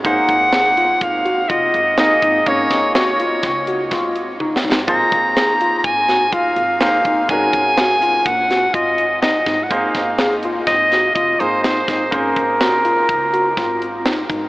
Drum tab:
HH |x--x--x--x--x--x--x--x--x--x--|x--x--x--x--x--x--x--x--------|x--x--x--x--x--x--x--x--x--x--|x--x--x--x--x--x--x--x--x--x--|
SD |------o-----------------o-----|---o--o-----o-----o-------o-o-|------o--------o--------o-----|------o--------o--------o--o--|
T1 |------------------------------|------------------------o-----|------------------------------|------------------------------|
BD |o--o--------o-----o--------o--|o--o--------o-----o-----------|o--o--------o-----o--------o--|o--o--------o-----o--------o--|

HH |x--x--x--x--x--x--x--x--x--x--|x--x--x--x--x--x--x--x--x--x--|
SD |---o--o-----o--o--------o--o--|------o-----------o-----o-----|
T1 |------------------------------|------------------------------|
BD |o--o--------o-----o--------o--|o--o--------o-----o--------o--|